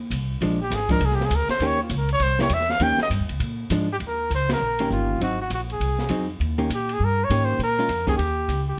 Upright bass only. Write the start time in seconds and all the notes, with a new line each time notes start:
0.10 C2
0.41 A#1
0.70 G#1
1.00 C2
1.30 D2
1.48 muted upright bass stroke
1.59 D#2
1.90 C#2
2.20 C2
2.50 E2
2.80 D#2
2.98 muted upright bass stroke
3.10 G2
3.20 D#2
3.29 C#2
3.40 A#2
3.70 G#2
4.00 D#2
4.30 C#2
4.60 A#1
4.90 G1
5.21 G#1
5.50 A#1
5.80 C2
6.10 F2
6.40 D#2
6.69 A#2
7.00 G2
7.30 G#2
7.59 A#2
7.88 F2
8.18 D#2
8.48 C#2